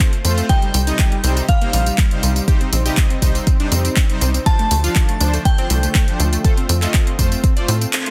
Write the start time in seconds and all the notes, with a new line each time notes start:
Already playing: F4 A4 C5
0.00 kick, clap, closed hi-hat
0.13 closed hi-hat
0.25 F2 A3 C4 F4 C5, open hi-hat, tambourine
0.38 C4, closed hi-hat, tambourine
0.49 C3 G3 D#4 G4 C5 G5, kick, closed hi-hat, tambourine
0.62 G3, closed hi-hat
0.74 C2 G3, open hi-hat, tambourine
0.87 C3 G3 D#4 D#5, closed hi-hat, tambourine
0.99 G3, kick, clap, closed hi-hat, tambourine
1.12 G3, closed hi-hat
1.24 C2 C3 G3 C4 D#4 C5, open hi-hat, tambourine
1.37 G3, closed hi-hat, tambourine
1.49 G3 F5, kick, closed hi-hat, tambourine
1.61 C3 G3 A#3 D#4 C5, closed hi-hat
1.73 A#1 G3, open hi-hat, tambourine
1.86 G3, closed hi-hat, tambourine
1.98 G3, kick, clap, closed hi-hat, tambourine
2.11 C3 G3 D#4 C5, closed hi-hat
2.23 C2 G3, open hi-hat, tambourine
2.36 G3, closed hi-hat, tambourine
2.48 C3 G3 D#4 G4 C5, kick, closed hi-hat, tambourine
2.61 C4, closed hi-hat
2.73 A#1 C4, open hi-hat, tambourine
2.86 C3 G3 D#4 G4 D#5, closed hi-hat, tambourine
2.97 C4, kick, clap, closed hi-hat, tambourine
3.10 C4, closed hi-hat
3.22 C2 C3 G3 D#4 C5, kick, open hi-hat, tambourine
3.35 C4, closed hi-hat, tambourine
3.47 C4, kick, closed hi-hat, tambourine
3.60 C3 G3 D4 D#4 C5, closed hi-hat
3.72 F2 C4, open hi-hat, tambourine
3.85 C4, closed hi-hat, tambourine
3.96 C4, kick, clap, closed hi-hat
4.10 C3 G3 D#4 C5, closed hi-hat
4.21 C2 C4, open hi-hat, tambourine
4.34 C4, closed hi-hat, tambourine
4.46 D3 F3 D4 F4 A4 C5 A5, kick, closed hi-hat, tambourine
4.59 A3, closed hi-hat
4.71 D2 A3, open hi-hat, tambourine
4.84 F3 D4 F4 F5, closed hi-hat, tambourine
4.96 A3, kick, clap, closed hi-hat, tambourine
5.09 A3, closed hi-hat
5.21 D2 F3 D4 C5, open hi-hat, tambourine
5.34 A3, closed hi-hat, tambourine
5.45 A3 G5, kick, closed hi-hat, tambourine
5.58 F3 C4 D4 C5, closed hi-hat
5.70 C2 A3, open hi-hat, tambourine
5.83 A3, closed hi-hat, tambourine
5.95 A3, kick, clap, closed hi-hat, tambourine
6.08 F3 D4 C5, closed hi-hat
6.20 D2 A3, open hi-hat, tambourine
6.33 A3, closed hi-hat, tambourine
6.44 A3 C4 F4 A4 C5, kick, closed hi-hat, tambourine
6.57 C4, closed hi-hat
6.69 F2 C4, open hi-hat, tambourine
6.82 A3 F4 A4 D#5, clap, closed hi-hat, tambourine
6.94 C4, kick, clap, closed hi-hat, tambourine
7.07 C4, closed hi-hat
7.19 F2 A3 F4 C5, kick, open hi-hat, tambourine
7.32 C4, closed hi-hat, tambourine
7.44 C4, kick, closed hi-hat, tambourine
7.57 A3 F4 C5 D5, closed hi-hat
7.68 A2 C4, open hi-hat, tambourine
7.81 C4, closed hi-hat, tambourine
7.93 C4, clap, closed hi-hat, tambourine
8.06 A3 F4 C5, closed hi-hat